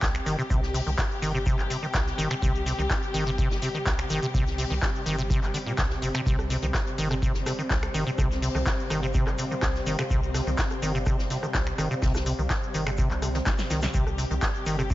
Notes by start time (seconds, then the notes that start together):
Already playing: C3 G3 C4 G4 D5 C6
0.02 C2, kick, snare, clap, shaker
0.15 finger snap, shaker
0.26 G1 D#3, open hi-hat, shaker
0.39 C3, shaker
0.50 C2 C3, kick, shaker
0.63 snare, shaker
0.74 C3, open hi-hat, shaker
0.87 C2 D#3, shaker
0.98 kick, snare, clap, shaker
1.12 shaker
1.22 G1 D#3, open hi-hat, shaker
1.35 C3, shaker
1.46 C3, kick, shaker
1.59 G1, clap, shaker
1.70 C3, open hi-hat, shaker
1.83 D#3, shaker
1.94 C2, kick, snare, clap, shaker
1.95 shaker
2.07 snare, shaker
2.18 G1 D#3, open hi-hat, shaker
2.31 C3, finger snap, shaker
2.42 C2 C3, kick, shaker
2.56 shaker
2.66 C3, snare, open hi-hat, shaker
2.79 C2 D#3, closed hi-hat, shaker
2.90 kick, snare, clap, shaker
3.02 closed hi-hat, shaker
3.14 G1 D#3, open hi-hat, shaker
3.27 C3, shaker
3.38 C3, kick, shaker
3.51 G1, snare, shaker
3.62 C3, snare, open hi-hat, shaker
3.75 D#3, shaker
3.86 C2, kick, snare, clap, shaker
3.99 finger snap, shaker
4.09 G1 D#3, open hi-hat, shaker
4.11 shaker
4.22 C3, shaker
4.34 C2 C3, kick, shaker
4.47 snare, shaker
4.58 C3, open hi-hat, shaker
4.70 C2 D#3, shaker
4.82 kick, snare, clap, shaker
4.96 shaker
5.06 G1 D#3, open hi-hat, shaker
5.18 C3, shaker
5.30 C3, kick, shaker
5.43 G1, clap, shaker
5.54 D3, open hi-hat, shaker
5.66 A#2, shaker
5.78 C2 C3, kick, snare, clap, shaker
5.90 snare, shaker
6.02 G1 C3, open hi-hat, shaker
6.14 C3, finger snap, shaker
6.26 C2 C3 C4, kick, shaker
6.39 cross-stick, shaker
6.50 C3, snare, open hi-hat, shaker
6.61 C2 D#3 F5, closed hi-hat, shaker
6.74 kick, cross-stick, snare, clap, shaker
6.87 closed hi-hat, shaker
6.98 G1 D#3, open hi-hat, shaker
7.11 C3, cross-stick, shaker
7.22 C3, kick, shaker
7.34 G1, snare, shaker
7.46 C3, cross-stick, snare, open hi-hat, shaker
7.59 D#3, shaker
7.70 C2, kick, snare, clap, shaker
7.83 finger snap, cross-stick, shaker
7.94 G1 D#3, open hi-hat, shaker
8.07 C3, shaker
8.18 C2 C3, kick, cross-stick, shaker
8.31 snare, shaker
8.42 C3, open hi-hat, shaker
8.55 C2 D#3, cross-stick, shaker
8.66 kick, snare, clap, shaker
8.80 shaker
8.90 G1 D#3, cross-stick, open hi-hat, shaker
9.03 C3, shaker
9.14 C3, kick, shaker
9.27 G1, cross-stick, clap, shaker
9.38 C3, open hi-hat, shaker
9.51 D#3, shaker
9.62 C2, kick, cross-stick, snare, clap, shaker
9.75 snare, shaker
9.86 G1 D#3, open hi-hat, shaker
9.99 C3, finger snap, cross-stick, shaker
10.10 C2 C3, kick, shaker
10.23 shaker
10.34 C3, cross-stick, snare, open hi-hat, shaker
10.47 C2 D#3, closed hi-hat, shaker
10.58 kick, snare, clap, shaker
10.70 cross-stick, closed hi-hat, shaker
10.82 G1 D#3, open hi-hat, shaker
10.95 C3, shaker
11.06 C3, kick, cross-stick, shaker
11.19 G1, snare, shaker
11.30 C3, snare, open hi-hat, shaker
11.43 D#3, cross-stick, shaker
11.54 C2, kick, snare, clap, shaker
11.67 finger snap, shaker
11.78 G1 D#3, cross-stick, open hi-hat, shaker
11.91 C3, shaker
12.02 C2 C3, kick, snare, shaker
12.14 cross-stick, snare, shaker
12.26 C3, open hi-hat, shaker
12.39 C2 D#3, shaker
12.50 kick, cross-stick, snare, clap, shaker
12.63 shaker
12.74 G1 D#3, open hi-hat, shaker
12.87 C3, finger snap, cross-stick, shaker
12.98 C3, kick, shaker
13.10 C2, clap, shaker
13.22 C3, cross-stick, open hi-hat, shaker
13.34 D#3, snare, shaker
13.46 G1, kick, snare, clap, shaker
13.58 snare, shaker
13.70 C2 D#3, snare, open hi-hat, shaker
13.82 C3, snare, shaker
13.83 shaker
13.94 C2 C3 G4, kick, shaker
14.07 cross-stick, shaker
14.18 C3, snare, open hi-hat, shaker
14.31 C2 D#3, closed hi-hat, shaker
14.42 kick, cross-stick, snare, clap, shaker
14.54 closed hi-hat, shaker
14.66 G1 D#3, open hi-hat, shaker
14.79 C3, cross-stick, shaker
14.90 C3, kick, shaker